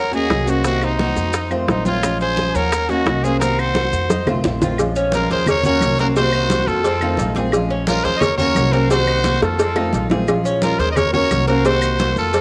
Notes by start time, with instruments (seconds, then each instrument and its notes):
Already playing: upright bass D#2, cuban tres C#4, trumpet A#4, flute F#5
0.12 nylon-string guitar A#3 C#4 F#4, cuban tres F#4, trumpet G#4, flute D#5, high conga, maracas
0.29 upright bass C2, nylon-string guitar D#3 A#3 C#4 F#4, high bongo, low bongo, high conga, claves, maracas
0.46 nylon-string guitar A#3 C#4 F#4, trumpet F#4, cuban tres C5, flute D#5, high conga, maracas
0.63 nylon-string guitar C3 D#3 A#3 C4 F#4, cuban tres C4, trumpet F#4, flute D#5, high bongo, high conga, maracas
0.81 trumpet D#4, flute C5, high bongo, high conga, claves, maracas
0.98 nylon-string guitar D#3 A#3 C4 F#4, cuban tres F#4, high bongo, high conga, maracas
1.16 upright bass F2, high bongo, high conga, maracas
1.32 cuban tres D#4, muted nylon-string guitar stroke, high bongo, high conga, maracas
1.50 nylon-string guitar D#3 A3 C4 F4, cuban tres C5, high bongo, high conga, claves, maracas
1.68 upright bass A#1, nylon-string guitar D#3 A3 C4 F4, trumpet D#4, flute C5, high bongo, low bongo, high conga, maracas
1.85 nylon-string guitar D#3 A3 C4 F4, trumpet F4, cuban tres F4, flute C#5, high conga, maracas
2.03 nylon-string guitar F3 G#3 C#4 F4, high bongo, high conga, claves, maracas
2.21 cuban tres G#4, trumpet C5, flute G#5, high conga, maracas
2.37 nylon-string guitar F3 G#3 C#4 F4, high bongo, high conga, maracas
2.54 upright bass D#2, cuban tres C#4, trumpet A#4, flute F#5, high conga, maracas
2.72 muted nylon-string guitar stroke, high bongo, high conga, claves, maracas
2.89 nylon-string guitar A#3 C#4 F#4, cuban tres F#4, trumpet F#4, flute D#5, high conga, maracas
3.06 upright bass C2, nylon-string guitar D#3 A#3 C#4, high bongo, low bongo, high conga, claves, maracas
3.23 nylon-string guitar A#3 C#4 F#4, trumpet G#4, cuban tres C5, flute F5, high conga, maracas
3.39 nylon-string guitar C3 D#3 A#3 C4 F#4, cuban tres C4, trumpet A#4, flute F#5, high bongo, high conga, maracas
3.58 trumpet C5, flute F#5, high bongo, high conga, claves, maracas
3.75 nylon-string guitar D#3 A#3 C4 F#4, cuban tres F#4, high bongo, high conga, maracas
3.92 upright bass F2, high bongo, high conga, maracas
4.10 cuban tres D#4, muted nylon-string guitar stroke, high bongo, high conga, maracas
4.27 upright bass C2, nylon-string guitar D#3 A3 C4 F4, cuban tres C5, high bongo, low conga, claves, maracas
4.44 upright bass A#1, nylon-string guitar D#3 A3 C4 F4, low bongo, low conga, maracas
4.62 nylon-string guitar D#3 A3 C4 F4, cuban tres F4, low bongo, low conga, maracas
4.78 nylon-string guitar F3 G#3 C#4 F4, cowbell, high conga, claves, maracas
4.95 cuban tres C#4, high conga, maracas
5.12 nylon-string guitar F3 G#3 C#4 F4, cuban tres F4, flute F4, trumpet A#4, cowbell, high conga, maracas
5.30 upright bass D#2, flute G#4, cuban tres A#4, trumpet C5, cowbell, maracas
5.47 flute A#4, trumpet C#5, muted nylon-string guitar stroke, cowbell, high conga, low conga, claves, maracas
5.64 nylon-string guitar A#3 C#4 F#4, cuban tres F#4, flute A#4, trumpet C#5, high conga, low conga, maracas
5.80 upright bass C2, nylon-string guitar D#3 A#3 C#4, cowbell, high conga, claves, maracas
5.85 nylon-string guitar F#4
5.98 nylon-string guitar A#3 C#4 F#4, cuban tres C4, flute F#4, trumpet A#4, cowbell, high conga, maracas
6.16 nylon-string guitar C3 D#3 A#3 C4 F#4, cuban tres C4, flute F#4, trumpet C5, cowbell, high conga, maracas
6.32 cuban tres D#4, high conga, claves
6.50 nylon-string guitar D#3 A#3 C4 F#4, cuban tres F#4, cowbell, high conga, maracas
6.67 upright bass F2, flute F4, trumpet A4, maracas
6.84 cuban tres C4, muted nylon-string guitar stroke, cowbell, high conga, maracas
7.01 nylon-string guitar D#3 A3 C4 F4, cuban tres D#4, high conga, claves
7.17 upright bass A#1, nylon-string guitar D#3 A3 C4 F4, cowbell, high conga, maracas
7.35 nylon-string guitar D#3 A3 C4 F4, cuban tres G#4, cowbell, high conga, maracas
7.52 nylon-string guitar F3 G#3 C#4 F4, cowbell, high conga, claves, maracas
7.69 cuban tres C#4, high conga
7.87 nylon-string guitar F3 G#3 C#4 F4, cuban tres F4, flute F4, trumpet A#4, cowbell, high conga, maracas
8.04 upright bass D#2, flute G#4, cuban tres A#4, trumpet C5, cowbell, maracas
8.17 flute C5, trumpet C#5 D#5, muted nylon-string guitar stroke
8.21 flute A#4, cowbell, high conga, low conga, claves, maracas
8.38 nylon-string guitar A#3 C#4 F#4, cuban tres F#4, flute A#4, trumpet C#5, high conga, low conga, maracas
8.55 upright bass C2, nylon-string guitar D#3 A#3 C#4 F#4, cowbell, high conga, claves, maracas
8.72 nylon-string guitar A#3 C#4 F#4, cuban tres C4, flute F#4, trumpet A#4, cowbell, high conga, maracas
8.89 nylon-string guitar C3 D#3 A#3 C4 F#4, cuban tres C4, flute F#4, trumpet C5, cowbell, high conga, maracas
9.07 cuban tres D#4, high conga, claves
9.24 nylon-string guitar D#3 A#3 C4 F#4, cuban tres F#4, cowbell, high conga, maracas
9.42 upright bass F2, flute F4, trumpet A4, high bongo, maracas
9.58 cuban tres C4, muted nylon-string guitar stroke, cowbell, high bongo, high conga, maracas
9.75 nylon-string guitar D#3 A3 C4 F4, cuban tres D#4, high bongo, high conga, claves
9.93 upright bass A#1, nylon-string guitar D#3 A3 C4 F4, cowbell, high conga, maracas
10.10 nylon-string guitar D#3 A3 C4 F4, cuban tres G#4, cowbell, low bongo, high conga, maracas
10.27 nylon-string guitar F3 G#3 C#4 F4, cowbell, high conga, claves, maracas
10.44 cuban tres C#4, high conga, maracas
10.62 nylon-string guitar F3 G#3 C#4 F4, flute F4, cuban tres F4, trumpet A#4, cowbell, high conga, maracas
10.79 upright bass D#2, flute G#4, cuban tres A#4, trumpet C5, cowbell, maracas
10.92 flute C5, trumpet D#5
10.96 flute A#4, trumpet C#5, muted nylon-string guitar stroke, cowbell, high conga, low conga, claves, maracas
11.13 nylon-string guitar A#3 C#4 F#4, cuban tres F#4, flute A#4, trumpet C#5, high conga, low conga
11.31 upright bass C2, nylon-string guitar D#3 A#3 C#4 F#4, cowbell, high conga, claves, maracas
11.48 nylon-string guitar A#3 C#4 F#4, cuban tres C4, flute F#4, trumpet A#4, cowbell, high conga, maracas
11.65 nylon-string guitar C3 D#3 A#3 C4 F#4, cuban tres C4, flute F#4, trumpet C5, cowbell, high conga, maracas
11.81 cuban tres D#4, high conga, claves, maracas
11.99 nylon-string guitar D#3 A#3 C4 F#4, cuban tres F#4, cowbell, high conga, maracas
12.16 upright bass F2, flute F4, trumpet A4, maracas
12.33 cuban tres C4, muted nylon-string guitar stroke, cowbell, high conga, maracas